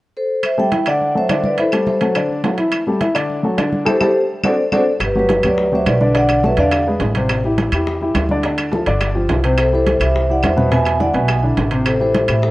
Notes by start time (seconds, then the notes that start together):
0.17 A4 C5
0.43 C5 E5, high conga, high timbale, claves
0.58 G3 G4 A4 E5 G5, high conga
0.71 E3 E4 E5, high conga, high timbale, low timbale
0.86 D3 D4 D5 F#5, high conga, high timbale, claves
1.01 high conga
1.15 F#3 F#4 A4 C5 E5, high conga
1.29 D3 D4 D5, high conga, high timbale, low timbale, claves
1.44 B4 D5, high conga
1.58 E3 E4 A4 C5 E5, high conga, high timbale
1.72 G3 G4 A4, high conga, high timbale, claves
1.87 A4 C5, high conga, low timbale
2.01 F#3 F#4 A4, high conga, high timbale
2.15 D3 D4 D5, high conga, high timbale, claves
2.30 high conga
2.43 F#3 F#4 A4, high conga, high timbale, low timbale
2.58 E3 E4 E5, high timbale
2.72 high conga, high timbale, claves
2.87 G3 G4 A4, high conga
3.00 E3 E4 E5, high conga, high timbale, low timbale
3.14 D3 D4 D5, high conga, high timbale, claves
3.30 high conga
3.43 F#3 F#4 A4, high conga
3.58 D3 D4 D5, high conga, high timbale, low timbale, claves
3.73 high conga
3.85 E4 G4 A4 C5, high conga, high timbale, claves
4.00 E4 G4 A4 C5, high conga, high timbale, claves
4.44 C4 D4 F#4 A4 C5 D5, high conga, high timbale, claves
4.72 C4 D4 F#4 A4 C5 D5, high conga, high timbale, claves
5.00 G1 G4, high bongo, high conga, high timbale, claves
5.05 B4
5.15 F#3 F#4 G4 B4, high bongo, high conga
5.29 high bongo, high conga, high timbale, low timbale
5.43 D2 F#3 F#4 G4, high bongo, high conga, high timbale, claves
5.47 B4 D5
5.58 high bongo, high conga
5.72 F#3 F#4 G4 C5 E5, high conga
5.86 B1 B4 D5, high bongo, low bongo, high conga, high timbale, low timbale, claves
6.01 D3 D4 D5, high bongo, high conga
6.15 D3 D4 D5 F#5, high bongo, high conga, high timbale
6.29 high bongo, high conga, high timbale, claves
6.44 F#3 F#4 A4 B4 E5, high bongo, high conga, low timbale
6.57 E2 D3 D4 D5 F5, high bongo, high conga, high timbale
6.72 high bongo, high conga, high timbale, claves
6.87 G#3 G#4 B4, high conga
7.00 A1, high bongo, low bongo, high conga, high timbale, low timbale
7.15 C3 C4 C5, high bongo, high conga, high timbale
7.29 high bongo, high conga, high timbale, claves
7.44 E3 E4 G4, high bongo, high conga
7.58 high bongo, high conga, high timbale, low timbale
7.71 E2 E3 E4 G4, high bongo, high conga, high timbale, claves
7.86 high bongo, high conga
8.01 E3 E4 G4, high conga
8.14 D2, high bongo, low bongo, high conga, high timbale, low timbale, claves
8.29 D3 D4 D5, high bongo, high conga
8.43 D3 D4 D5, high bongo, high conga, high timbale
8.58 high bongo, high conga, high timbale, claves
8.72 F3 F4 A4, high bongo, high conga, low timbale
8.87 G1 D3 D4 D5, high bongo, high conga, high timbale
9.01 high bongo, high conga, high timbale, claves
9.15 F3 F4 G4, high conga
9.29 C2, high bongo, low bongo, high conga, high timbale, low timbale
9.44 C3 C4 C5, high bongo, high timbale
9.58 A4 C5, high bongo, high conga, high timbale, claves
9.72 E3 E4 G4 A4 C5, high bongo, high conga
9.86 high bongo, high conga, high timbale, low timbale
10.00 C2 E3 E4 G4 C5 E5, high bongo, high conga, high timbale, claves
10.15 high bongo, high conga
10.29 E3 E4 G4 D5 F#5, high conga
10.43 E2 C5 E5, high bongo, low bongo, high conga, high timbale, low timbale, claves
10.57 B2 B3 B4, high bongo, high conga
10.72 B2 B3 B4 E5 G#5, high bongo, high timbale
10.85 high bongo, high conga, high timbale, claves
11.00 D3 D4 E4 D5 F#5, high bongo, high conga, low timbale
11.14 B1 B2 B3 B4 E5 G#5, high bongo, high conga, high timbale
11.28 high bongo, high conga, high timbale, claves
11.43 D3 D4 E4, high conga
11.57 A1, high bongo, low bongo, high conga, high timbale, low timbale
11.71 C3 C4 C5, high bongo, high timbale
11.86 A4 C5, high bongo, high conga, high timbale, claves
12.00 E3 E4 G4 A4 C5, high bongo, high conga
12.14 high bongo, high conga, high timbale, low timbale
12.28 A2 E3 E4 G4 C5 E5, high bongo, high conga, high timbale, claves
12.42 A4 C5, high bongo, high conga